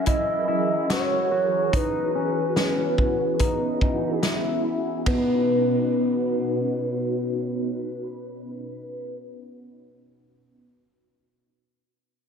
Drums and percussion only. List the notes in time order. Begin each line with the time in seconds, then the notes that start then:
0.06 kick, closed hi-hat
0.90 snare, closed hi-hat
1.73 kick, closed hi-hat
2.56 snare, closed hi-hat
2.98 kick
3.39 kick, closed hi-hat
3.81 kick
4.23 snare, closed hi-hat
5.06 kick, ride